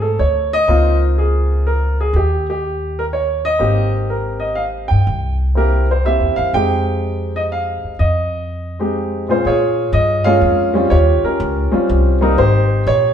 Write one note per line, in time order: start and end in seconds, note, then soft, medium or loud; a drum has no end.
0.00 0.15 G#2 medium
0.00 0.59 A3 soft
0.00 0.58 C4 soft
0.00 0.59 D#4 soft
0.00 0.59 F#4 medium
0.00 0.18 A4 medium
0.19 0.65 D2 medium
0.19 0.53 C#5 medium
0.53 0.98 D#5 loud
0.68 2.10 C#2 medium
0.68 2.05 A#3 medium
0.68 2.05 C4 medium
0.68 2.05 D#4 medium
0.68 2.05 F4 medium
1.18 1.68 G#4 medium
1.67 1.97 A#4 medium
2.01 2.16 G#4 medium
2.13 3.56 D#2 medium
2.13 2.46 G4 medium
2.50 2.99 G4 medium
2.99 3.04 A#4 medium
3.13 3.46 C#5 medium
3.45 3.90 D#5 loud
3.59 4.86 G#1 medium
3.59 4.96 A#3 medium
3.59 4.97 C4 medium
3.59 4.97 D#4 medium
3.59 4.97 G4 medium
4.10 4.43 A#4 medium
4.40 4.58 D#5 medium
4.55 4.63 F5 medium
4.88 5.06 G2 medium
4.88 5.35 G5 medium
5.07 6.17 C2 medium
5.55 5.85 A#3 medium
5.55 5.85 C4 medium
5.55 5.85 E4 medium
5.55 5.86 G4 medium
5.55 5.90 A#4 medium
5.91 6.05 C5 medium
6.04 6.53 A#3 medium
6.04 6.53 C4 soft
6.04 6.54 E4 medium
6.04 6.54 G4 medium
6.04 6.39 E5 medium
6.20 6.36 E2 medium
6.36 6.53 F#2 medium
6.36 6.52 F5 medium
6.53 7.79 F2 medium
6.53 7.90 G#3 medium
6.53 7.90 C4 medium
6.53 7.90 D#4 medium
6.53 7.91 G4 medium
6.53 7.37 G5 loud
7.36 7.41 D#5 medium
7.52 8.02 F5 medium
7.84 muted upright bass stroke soft
7.99 9.41 F2 medium
7.99 8.93 D#5 medium
8.79 9.26 G#3 medium
8.79 9.26 C4 soft
8.79 9.26 D#4 soft
8.79 9.26 G4 medium
9.28 9.44 A#2 medium
9.28 9.44 G#3 medium
9.28 9.44 C4 soft
9.28 9.44 C#4 soft
9.28 9.44 F4 medium
9.28 9.47 C5 medium
9.45 9.92 A#2 medium
9.45 10.23 F4 medium
9.45 10.23 G#4 medium
9.45 9.96 C#5 medium
9.93 10.41 G2 medium
9.93 10.27 D#5 medium
10.24 10.71 G#3 medium
10.24 10.72 A#3 medium
10.24 10.72 C#4 medium
10.24 10.72 F4 medium
10.24 10.87 G#4 medium
10.24 10.87 C#5 medium
10.24 10.92 F5 loud
10.41 10.89 F2 medium
10.74 10.89 G3 medium
10.74 10.90 C4 medium
10.74 10.90 C#4 medium
10.74 10.90 F4 medium
10.90 11.21 D#2 medium
10.90 11.69 F4 medium
10.90 11.25 G4 medium
10.90 11.24 C#5 loud
11.23 11.71 C#4 medium
11.23 11.86 G4 medium
11.23 11.69 A#4 medium
11.23 muted upright bass stroke soft
11.40 11.70 C#2 medium
11.72 12.17 G3 medium
11.72 12.18 C4 medium
11.72 12.18 C#4 medium
11.72 12.18 F4 medium
11.72 muted upright bass stroke soft
11.89 12.36 C2 medium
12.21 12.36 G3 medium
12.21 12.36 A#3 medium
12.21 12.36 C4 medium
12.21 12.36 D#4 medium
12.21 12.38 A#4 medium
12.38 12.85 G#1 medium
12.38 13.14 D#4 medium
12.38 13.14 G4 medium
12.38 12.83 C5 medium
12.87 13.14 A#1 medium
12.87 13.14 C#5 loud